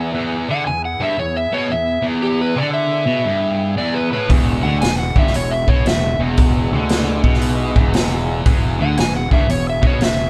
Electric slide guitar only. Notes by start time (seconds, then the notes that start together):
0.51 F#5
0.67 G#5
0.85 F#5
1.03 E5
1.19 C#5
1.36 E5
1.54 C#5
1.71 E5
2.23 G4
2.41 B4
2.58 D5
2.73 E5
3.78 D5
3.94 B4
4.13 B4
4.63 F#5
4.81 G#5
4.99 F#5
5.19 E5
5.36 C#5
5.51 E5
5.69 C#5
5.87 E5
8.82 F#5
9.00 G#5
9.17 F#5
9.33 E5
9.50 C#5
9.69 E5
9.87 C#5
10.03 E5